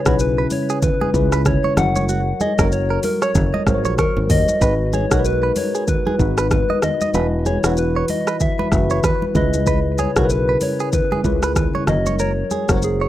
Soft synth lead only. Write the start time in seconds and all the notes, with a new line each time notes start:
Already playing: C#5
0.21 B4
0.52 C#5
0.84 B4
1.47 C#5
1.78 F#5
2.41 D#5
2.73 C#5
3.05 A#4
3.23 C#5
3.99 A#4
4.31 D#5
4.94 C#5
5.26 B4
5.57 C#5
5.89 B4
6.52 B4
6.84 D#5
7.47 C#5
7.79 B4
8.10 D#5
8.41 E5
9.05 B4
9.37 D#5
10.00 C#5
10.31 B4
10.63 C#5
10.94 B4
11.57 B4
11.89 D#5
12.20 C#5
12.84 G#4